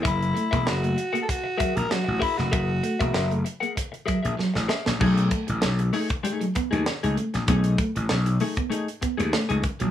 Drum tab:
CC |----------------|----------------|x---------------|----------------|
HH |xxxx-xxxx-xx--ox|x-xx-xxxxxxx----|-xxx-xoxxxxx-xxx|xxxx-xoxxxxx-xxx|
SD |----o-------o--o|----o-------oooo|----o-------o--o|----o-------o---|
BD |o--o----o-o---o-|o--o----o-o-----|o-o----o--o-----|o-o----o--o---o-|